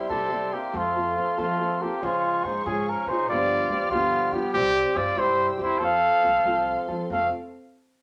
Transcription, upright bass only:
0, 0, Header, 1, 2, 480
1, 0, Start_track
1, 0, Key_signature, -1, "major"
1, 0, Tempo, 424328
1, 822, Time_signature, 6, 3, 24, 8
1, 9077, End_track
2, 0, Start_track
2, 0, Title_t, "Upright bass"
2, 0, Program_c, 0, 32
2, 109, Note_on_c, 0, 48, 87
2, 573, Note_off_c, 0, 48, 0
2, 832, Note_on_c, 0, 41, 97
2, 1302, Note_off_c, 0, 41, 0
2, 1567, Note_on_c, 0, 53, 87
2, 2039, Note_off_c, 0, 53, 0
2, 2294, Note_on_c, 0, 49, 98
2, 2606, Note_off_c, 0, 49, 0
2, 2761, Note_on_c, 0, 44, 82
2, 2919, Note_off_c, 0, 44, 0
2, 3006, Note_on_c, 0, 44, 102
2, 3317, Note_off_c, 0, 44, 0
2, 3466, Note_on_c, 0, 49, 88
2, 3706, Note_off_c, 0, 49, 0
2, 3706, Note_on_c, 0, 43, 101
2, 4018, Note_off_c, 0, 43, 0
2, 4165, Note_on_c, 0, 38, 83
2, 4327, Note_off_c, 0, 38, 0
2, 4408, Note_on_c, 0, 38, 96
2, 4720, Note_off_c, 0, 38, 0
2, 4876, Note_on_c, 0, 55, 90
2, 5135, Note_on_c, 0, 36, 110
2, 5152, Note_off_c, 0, 55, 0
2, 5441, Note_off_c, 0, 36, 0
2, 5610, Note_on_c, 0, 43, 106
2, 5763, Note_off_c, 0, 43, 0
2, 5851, Note_on_c, 0, 43, 90
2, 6160, Note_off_c, 0, 43, 0
2, 6326, Note_on_c, 0, 40, 97
2, 6564, Note_off_c, 0, 40, 0
2, 6564, Note_on_c, 0, 41, 110
2, 6881, Note_off_c, 0, 41, 0
2, 7069, Note_on_c, 0, 36, 83
2, 7222, Note_off_c, 0, 36, 0
2, 7286, Note_on_c, 0, 36, 89
2, 7607, Note_off_c, 0, 36, 0
2, 7786, Note_on_c, 0, 53, 81
2, 7944, Note_off_c, 0, 53, 0
2, 8030, Note_on_c, 0, 29, 86
2, 8257, Note_off_c, 0, 29, 0
2, 9077, End_track
0, 0, End_of_file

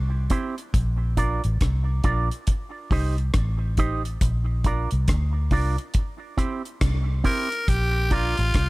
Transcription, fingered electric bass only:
0, 0, Header, 1, 2, 480
1, 0, Start_track
1, 0, Key_signature, -2, "major"
1, 0, Tempo, 867052
1, 411, Time_signature, 4, 2, 24, 8
1, 4812, End_track
2, 0, Start_track
2, 0, Title_t, "Fingered electric bass"
2, 0, Program_c, 0, 33
2, 0, Note_on_c, 0, 36, 78
2, 151, Note_off_c, 0, 36, 0
2, 412, Note_on_c, 0, 34, 96
2, 775, Note_off_c, 0, 34, 0
2, 801, Note_on_c, 0, 33, 88
2, 885, Note_off_c, 0, 33, 0
2, 894, Note_on_c, 0, 36, 86
2, 1112, Note_off_c, 0, 36, 0
2, 1132, Note_on_c, 0, 34, 103
2, 1265, Note_off_c, 0, 34, 0
2, 1613, Note_on_c, 0, 36, 90
2, 1832, Note_off_c, 0, 36, 0
2, 1854, Note_on_c, 0, 33, 78
2, 2311, Note_off_c, 0, 33, 0
2, 2335, Note_on_c, 0, 34, 93
2, 2697, Note_off_c, 0, 34, 0
2, 2725, Note_on_c, 0, 36, 82
2, 2808, Note_off_c, 0, 36, 0
2, 2817, Note_on_c, 0, 38, 102
2, 3034, Note_off_c, 0, 38, 0
2, 3055, Note_on_c, 0, 36, 91
2, 3187, Note_off_c, 0, 36, 0
2, 3776, Note_on_c, 0, 36, 80
2, 3993, Note_off_c, 0, 36, 0
2, 4255, Note_on_c, 0, 34, 101
2, 4617, Note_off_c, 0, 34, 0
2, 4643, Note_on_c, 0, 33, 90
2, 4726, Note_off_c, 0, 33, 0
2, 4733, Note_on_c, 0, 36, 95
2, 4812, Note_off_c, 0, 36, 0
2, 4812, End_track
0, 0, End_of_file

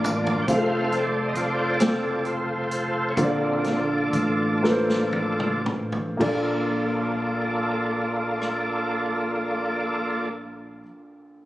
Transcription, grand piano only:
0, 0, Header, 1, 2, 480
1, 0, Start_track
1, 0, Key_signature, -2, "major"
1, 0, Tempo, 873362
1, 265, Time_signature, 6, 3, 24, 8
1, 746, Tempo, 906344
1, 1706, Tempo, 983607
1, 2666, Tempo, 1071429
1, 3146, Tempo, 1107011
1, 5420, End_track
2, 0, Start_track
2, 0, Title_t, "Grand piano"
2, 0, Program_c, 0, 0
2, 0, Control_c, 0, 64, 127
2, 0, Note_on_c, 0, 62, 80
2, 0, Note_on_c, 0, 65, 77
2, 0, Note_on_c, 0, 70, 70
2, 0, Note_on_c, 0, 74, 88
2, 0, Note_on_c, 0, 81, 71
2, 204, Note_off_c, 0, 62, 0
2, 204, Note_off_c, 0, 65, 0
2, 206, Note_off_c, 0, 81, 0
2, 207, Note_off_c, 0, 70, 0
2, 207, Note_off_c, 0, 74, 0
2, 260, Note_on_c, 0, 60, 65
2, 264, Note_on_c, 0, 65, 58
2, 269, Note_on_c, 0, 68, 45
2, 271, Note_on_c, 0, 77, 76
2, 273, Control_c, 0, 64, 0
2, 303, Note_off_c, 0, 68, 0
2, 306, Note_on_c, 0, 69, 58
2, 365, Control_c, 0, 64, 127
2, 919, Note_off_c, 0, 60, 0
2, 921, Note_off_c, 0, 65, 0
2, 925, Note_off_c, 0, 77, 0
2, 942, Note_off_c, 0, 69, 0
2, 982, Note_on_c, 0, 60, 57
2, 985, Note_on_c, 0, 69, 55
2, 986, Note_on_c, 0, 65, 52
2, 990, Note_on_c, 0, 79, 65
2, 1644, Note_off_c, 0, 60, 0
2, 1646, Note_off_c, 0, 69, 0
2, 1647, Note_off_c, 0, 65, 0
2, 1648, Note_off_c, 0, 79, 0
2, 1707, Note_on_c, 0, 65, 60
2, 1709, Note_on_c, 0, 58, 66
2, 1711, Note_on_c, 0, 50, 59
2, 1711, Note_on_c, 0, 69, 65
2, 1712, Control_c, 0, 64, 0
2, 1713, Note_on_c, 0, 72, 56
2, 1742, Note_on_c, 0, 74, 77
2, 1744, Note_off_c, 0, 72, 0
2, 1803, Control_c, 0, 64, 127
2, 2355, Note_off_c, 0, 65, 0
2, 2356, Note_off_c, 0, 58, 0
2, 2357, Note_off_c, 0, 69, 0
2, 2373, Note_off_c, 0, 74, 0
2, 2399, Note_off_c, 0, 50, 0
2, 2417, Note_on_c, 0, 58, 65
2, 2420, Note_on_c, 0, 65, 61
2, 2421, Note_on_c, 0, 71, 57
2, 2422, Note_on_c, 0, 69, 60
2, 2453, Note_on_c, 0, 72, 70
2, 2455, Note_off_c, 0, 71, 0
2, 3084, Note_off_c, 0, 58, 0
2, 3085, Note_off_c, 0, 65, 0
2, 3086, Note_off_c, 0, 69, 0
2, 3101, Note_off_c, 0, 72, 0
2, 3130, Note_on_c, 0, 58, 61
2, 3138, Note_on_c, 0, 65, 59
2, 3142, Note_on_c, 0, 34, 59
2, 3143, Note_on_c, 0, 69, 55
2, 3151, Control_c, 0, 64, 0
2, 3152, Note_on_c, 0, 74, 69
2, 3223, Control_c, 0, 64, 127
2, 5133, Note_off_c, 0, 58, 0
2, 5142, Note_off_c, 0, 65, 0
2, 5145, Note_off_c, 0, 34, 0
2, 5146, Note_off_c, 0, 69, 0
2, 5155, Note_off_c, 0, 74, 0
2, 5420, End_track
0, 0, End_of_file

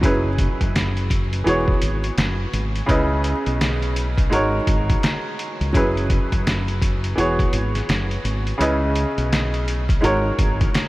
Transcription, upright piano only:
0, 0, Header, 1, 2, 480
1, 0, Start_track
1, 0, Tempo, 714286
1, 21, Time_signature, 4, 2, 24, 8
1, 7312, End_track
2, 0, Start_track
2, 0, Title_t, "Upright piano"
2, 0, Program_c, 0, 0
2, 0, Control_c, 0, 64, 127
2, 8, Note_on_c, 0, 54, 78
2, 15, Note_on_c, 0, 61, 80
2, 21, Note_on_c, 0, 64, 78
2, 28, Note_on_c, 0, 68, 81
2, 30, Control_c, 0, 64, 0
2, 35, Note_on_c, 0, 71, 91
2, 149, Control_c, 0, 64, 127
2, 678, Note_off_c, 0, 54, 0
2, 682, Note_off_c, 0, 61, 0
2, 685, Note_off_c, 0, 64, 0
2, 688, Note_off_c, 0, 68, 0
2, 692, Note_off_c, 0, 71, 0
2, 968, Note_on_c, 0, 52, 84
2, 975, Note_on_c, 0, 59, 77
2, 982, Note_on_c, 0, 66, 76
2, 988, Control_c, 0, 64, 0
2, 989, Note_on_c, 0, 68, 78
2, 996, Note_on_c, 0, 73, 94
2, 1097, Control_c, 0, 64, 127
2, 1638, Note_off_c, 0, 52, 0
2, 1642, Note_off_c, 0, 59, 0
2, 1645, Note_off_c, 0, 66, 0
2, 1649, Note_off_c, 0, 68, 0
2, 1652, Note_off_c, 0, 73, 0
2, 1924, Note_on_c, 0, 49, 85
2, 1931, Note_on_c, 0, 61, 77
2, 1937, Note_on_c, 0, 64, 72
2, 1944, Note_on_c, 0, 71, 79
2, 1949, Control_c, 0, 64, 0
2, 1951, Note_on_c, 0, 75, 90
2, 2086, Control_c, 0, 64, 127
2, 2596, Note_off_c, 0, 49, 0
2, 2600, Note_off_c, 0, 61, 0
2, 2603, Note_off_c, 0, 64, 0
2, 2606, Note_off_c, 0, 71, 0
2, 2610, Note_off_c, 0, 75, 0
2, 2888, Note_on_c, 0, 56, 83
2, 2895, Note_on_c, 0, 63, 83
2, 2902, Note_on_c, 0, 66, 80
2, 2908, Control_c, 0, 64, 0
2, 2908, Note_on_c, 0, 70, 74
2, 2915, Note_on_c, 0, 73, 96
2, 3025, Control_c, 0, 64, 127
2, 3558, Note_off_c, 0, 56, 0
2, 3562, Note_off_c, 0, 63, 0
2, 3565, Note_off_c, 0, 66, 0
2, 3568, Note_off_c, 0, 70, 0
2, 3572, Note_off_c, 0, 73, 0
2, 3847, Note_on_c, 0, 54, 82
2, 3855, Note_on_c, 0, 61, 78
2, 3861, Note_on_c, 0, 64, 77
2, 3868, Note_on_c, 0, 68, 82
2, 3869, Control_c, 0, 64, 0
2, 3875, Note_on_c, 0, 71, 97
2, 3991, Control_c, 0, 64, 127
2, 4518, Note_off_c, 0, 54, 0
2, 4522, Note_off_c, 0, 61, 0
2, 4525, Note_off_c, 0, 64, 0
2, 4528, Note_off_c, 0, 68, 0
2, 4532, Note_off_c, 0, 71, 0
2, 4808, Note_on_c, 0, 52, 85
2, 4815, Note_on_c, 0, 59, 73
2, 4822, Note_on_c, 0, 66, 77
2, 4828, Control_c, 0, 64, 0
2, 4829, Note_on_c, 0, 68, 76
2, 4835, Note_on_c, 0, 73, 93
2, 4933, Control_c, 0, 64, 127
2, 5478, Note_off_c, 0, 52, 0
2, 5482, Note_off_c, 0, 59, 0
2, 5485, Note_off_c, 0, 66, 0
2, 5488, Note_off_c, 0, 68, 0
2, 5492, Note_off_c, 0, 73, 0
2, 5764, Note_on_c, 0, 49, 88
2, 5771, Note_on_c, 0, 61, 78
2, 5777, Note_on_c, 0, 64, 71
2, 5784, Note_on_c, 0, 71, 80
2, 5789, Control_c, 0, 64, 0
2, 5791, Note_on_c, 0, 75, 87
2, 5920, Control_c, 0, 64, 127
2, 6436, Note_off_c, 0, 49, 0
2, 6439, Note_off_c, 0, 61, 0
2, 6443, Note_off_c, 0, 64, 0
2, 6446, Note_off_c, 0, 71, 0
2, 6449, Note_off_c, 0, 75, 0
2, 6726, Note_on_c, 0, 56, 84
2, 6732, Note_on_c, 0, 63, 83
2, 6739, Note_on_c, 0, 66, 79
2, 6746, Note_on_c, 0, 70, 76
2, 6750, Control_c, 0, 64, 0
2, 6753, Note_on_c, 0, 73, 94
2, 6851, Control_c, 0, 64, 127
2, 7312, Note_off_c, 0, 56, 0
2, 7312, Note_off_c, 0, 63, 0
2, 7312, Note_off_c, 0, 66, 0
2, 7312, Note_off_c, 0, 70, 0
2, 7312, Note_off_c, 0, 73, 0
2, 7312, End_track
0, 0, End_of_file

